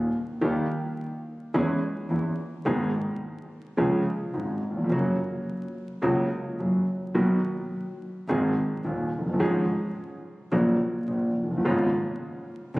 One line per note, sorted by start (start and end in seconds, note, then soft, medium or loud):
0.41 0.65 D#2 medium
0.41 0.66 D#2 medium
0.41 0.65 D#3 medium
0.41 0.65 G3 medium
0.41 0.66 A#3 medium
0.41 0.65 G4 medium
1.54 1.78 E2 medium
1.54 1.78 E3 medium
1.54 1.78 G#3 medium
1.54 1.78 C#4 medium
1.54 1.78 G#4 medium
2.10 2.34 E2 medium
2.10 2.34 E3 medium
2.65 2.90 G#1 medium
2.65 2.90 G#2 medium
2.65 2.90 D#3 medium
2.65 2.89 G#3 medium
2.65 2.90 B3 medium
2.65 2.90 G#4 medium
3.77 4.02 C#2 medium
3.77 4.02 C#3 medium
3.77 4.02 F3 medium
3.77 4.02 G#3 medium
3.77 4.01 C#4 medium
3.77 4.02 G#4 medium
4.34 4.58 G#1 medium
4.34 4.58 G#2 medium
4.70 4.77 D#2 soft
4.77 4.84 E2 soft
4.84 4.91 F2 medium
4.90 5.14 F#1 medium
4.90 5.15 F#2 medium
4.90 5.15 C#3 medium
4.90 5.15 F#3 medium
4.90 5.15 A#3 medium
4.90 5.15 F#4 medium
6.02 6.26 C#2 medium
6.02 6.27 C#2 medium
6.02 6.26 C#3 medium
6.02 6.26 F#3 medium
6.02 6.26 A#3 medium
6.02 6.26 F#4 medium
6.59 6.83 F#1 medium
6.59 6.83 F#2 medium
6.59 6.83 F#3 soft
7.14 7.39 B1 medium
7.14 7.39 B2 medium
7.14 7.39 D#3 medium
7.14 7.39 F#3 medium
7.14 7.39 B3 medium
7.14 7.39 F#4 medium
8.29 8.52 G#1 medium
8.29 8.52 G#2 medium
8.29 8.52 D#3 medium
8.29 8.52 G#3 medium
8.29 8.52 C4 medium
8.29 8.52 G#4 medium
8.84 9.08 D#1 medium
8.84 9.08 D#2 soft
8.84 9.08 D#2 medium
9.13 9.40 F#1 soft
9.18 9.26 F1 soft
9.27 9.33 F#1 soft
9.33 9.40 G1 medium
9.39 9.64 G#1 medium
9.39 9.64 G#2 medium
9.39 9.63 F3 medium
9.39 9.63 G#3 medium
9.39 9.63 C#4 medium
9.39 9.64 G#4 medium
10.52 10.76 A#1 medium
10.52 10.76 A#2 medium
10.52 10.75 C#3 medium
10.52 10.76 F#3 medium
10.52 10.76 A#3 medium
10.52 10.76 F#4 medium
11.08 11.31 A#1 medium
11.08 11.32 A#1 medium
11.08 11.32 A#2 medium
11.36 11.63 F#1 medium
11.44 11.50 F1 soft
11.51 11.57 F#1 medium
11.57 11.64 G1 medium
11.63 11.87 G#1 medium
11.63 11.88 G#1 medium
11.63 11.88 G#2 medium
11.63 11.88 C#3 medium
11.63 11.88 G#3 medium
11.63 11.88 B3 medium
11.63 11.88 F4 medium
12.75 12.79 F#1 medium